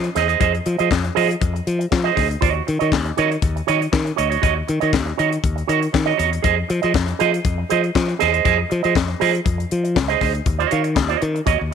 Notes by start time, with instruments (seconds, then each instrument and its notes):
0.04 muted clean electric guitar stroke, closed hi-hat
0.15 fingered electric bass E2, clean electric guitar G#4 C5 D#5, snare, closed hi-hat
0.28 clean electric guitar G#4 C5 D#5, closed hi-hat
0.40 fingered electric bass F2, clean electric guitar G#4 C5 D#5, kick, closed hi-hat
0.54 muted clean electric guitar stroke, closed hi-hat
0.66 fingered electric bass F3, muted clean electric guitar stroke, closed hi-hat
0.79 fingered electric bass F3, clean electric guitar G#4 C5 D#5, closed hi-hat
0.91 fingered electric bass F2, muted clean electric guitar stroke, kick, snare, clap
1.04 muted clean electric guitar stroke, closed hi-hat
1.15 fingered electric bass F3, clean electric guitar G#4 C5 D#5, open hi-hat
1.29 muted clean electric guitar stroke, closed hi-hat
1.41 fingered electric bass F2, muted clean electric guitar stroke, kick, closed hi-hat
1.54 muted clean electric guitar stroke, closed hi-hat
1.67 fingered electric bass F3, closed hi-hat
1.79 muted clean electric guitar stroke, closed hi-hat
1.91 fingered electric bass F3, muted clean electric guitar stroke, kick, snare, clap
2.04 clean electric guitar G#4 C5 D#5
2.16 fingered electric bass D2, clean electric guitar G#4 C5 D#5, kick, snare, open hi-hat
2.29 muted clean electric guitar stroke, closed hi-hat
2.41 fingered electric bass D#2, clean electric guitar F#4 C#5 D#5, kick, closed hi-hat
2.54 muted clean electric guitar stroke
2.67 fingered electric bass D#3, muted clean electric guitar stroke, closed hi-hat
2.79 fingered electric bass D#3, clean electric guitar F#4 C#5 D#5, closed hi-hat
2.92 fingered electric bass D#2, muted clean electric guitar stroke, kick, snare, clap
3.05 muted clean electric guitar stroke, closed hi-hat
3.17 fingered electric bass D#3, clean electric guitar F#4 C#5 D#5, closed hi-hat
3.31 muted clean electric guitar stroke, closed hi-hat
3.42 fingered electric bass D#2, kick, closed hi-hat
3.56 muted clean electric guitar stroke, closed hi-hat
3.67 fingered electric bass D#3, clean electric guitar F#4 C#5 D#5, closed hi-hat
3.81 muted clean electric guitar stroke, closed hi-hat
3.92 fingered electric bass D#3, muted clean electric guitar stroke, kick, snare, clap
4.05 muted clean electric guitar stroke, closed hi-hat
4.16 fingered electric bass D2, clean electric guitar F#4 C#5 D#5, closed hi-hat
4.30 clean electric guitar F#4 C#5 D#5, closed hi-hat
4.42 fingered electric bass D#2, clean electric guitar F#4 C#5 D#5, kick, closed hi-hat
4.55 muted clean electric guitar stroke
4.68 fingered electric bass D#3, muted clean electric guitar stroke, closed hi-hat
4.80 fingered electric bass D#3, clean electric guitar F#4 C#5 D#5, closed hi-hat
4.93 fingered electric bass D#2, muted clean electric guitar stroke, kick, snare, clap
5.06 muted clean electric guitar stroke
5.18 fingered electric bass D#3, clean electric guitar F#4 C#5 D#5, closed hi-hat
5.31 muted clean electric guitar stroke, closed hi-hat
5.44 fingered electric bass D#2, kick, closed hi-hat
5.56 muted clean electric guitar stroke, closed hi-hat
5.68 fingered electric bass D#3, clean electric guitar F#4 C#5 D#5, closed hi-hat
5.81 muted clean electric guitar stroke, closed hi-hat
5.93 fingered electric bass D#3, muted clean electric guitar stroke, kick, snare, clap
6.06 clean electric guitar F#4 C#5 D#5
6.18 fingered electric bass E2, clean electric guitar F#4 C#5 D#5, closed hi-hat
6.31 muted clean electric guitar stroke, closed hi-hat
6.42 fingered electric bass F2, clean electric guitar G#4 C5 D#5, kick, closed hi-hat
6.56 muted clean electric guitar stroke
6.69 fingered electric bass F3, muted clean electric guitar stroke, closed hi-hat
6.82 fingered electric bass F3, clean electric guitar G#4 C5 D#5, closed hi-hat
6.94 fingered electric bass F2, muted clean electric guitar stroke, kick, snare, clap
7.07 muted clean electric guitar stroke, closed hi-hat
7.19 fingered electric bass F3, clean electric guitar G#4 C5 D#5, closed hi-hat
7.32 muted clean electric guitar stroke, closed hi-hat
7.45 fingered electric bass F2, kick, closed hi-hat
7.58 muted clean electric guitar stroke
7.70 fingered electric bass F3, clean electric guitar G#4 C5 D#5, closed hi-hat
7.83 muted clean electric guitar stroke, closed hi-hat
7.95 fingered electric bass F3, muted clean electric guitar stroke, kick, snare, clap
8.08 muted clean electric guitar stroke, closed hi-hat
8.19 fingered electric bass E2, clean electric guitar G#4 C5 D#5, snare, closed hi-hat
8.32 clean electric guitar G#4 C5 D#5, closed hi-hat
8.45 fingered electric bass F2, clean electric guitar G#4 C5 D#5, kick, closed hi-hat
8.58 muted clean electric guitar stroke
8.70 fingered electric bass F3, muted clean electric guitar stroke, closed hi-hat
8.83 fingered electric bass F3, clean electric guitar G#4 C5 D#5, closed hi-hat
8.95 fingered electric bass F2, kick, snare, clap
9.08 muted clean electric guitar stroke
9.20 fingered electric bass F3, clean electric guitar G#4 C5 D#5, open hi-hat
9.33 muted clean electric guitar stroke, closed hi-hat
9.45 fingered electric bass F2, muted clean electric guitar stroke, kick, closed hi-hat
9.58 muted clean electric guitar stroke, closed hi-hat
9.71 fingered electric bass F3, closed hi-hat
9.84 muted clean electric guitar stroke, closed hi-hat
9.95 fingered electric bass C#2, muted clean electric guitar stroke, kick, snare, clap
10.08 clean electric guitar G#4 C5 D#5, closed hi-hat
10.21 fingered electric bass D2, clean electric guitar G#4 C5 D#5, kick, snare, open hi-hat
10.33 muted clean electric guitar stroke, closed hi-hat
10.46 fingered electric bass D#2, muted clean electric guitar stroke, kick, closed hi-hat
10.59 clean electric guitar F#4 C#5 D#5, closed hi-hat
10.71 fingered electric bass D#3, clean electric guitar F#4 C#5 F5, closed hi-hat
10.84 muted clean electric guitar stroke, closed hi-hat
10.95 fingered electric bass D#2, muted clean electric guitar stroke, kick, snare, clap
11.09 clean electric guitar F#4 C#5 D#5, closed hi-hat
11.21 fingered electric bass D#3, muted clean electric guitar stroke, closed hi-hat
11.35 muted clean electric guitar stroke, closed hi-hat
11.46 fingered electric bass D#2, clean electric guitar F#4 C#5 D#5, kick, closed hi-hat
11.59 fingered electric bass D#2, muted clean electric guitar stroke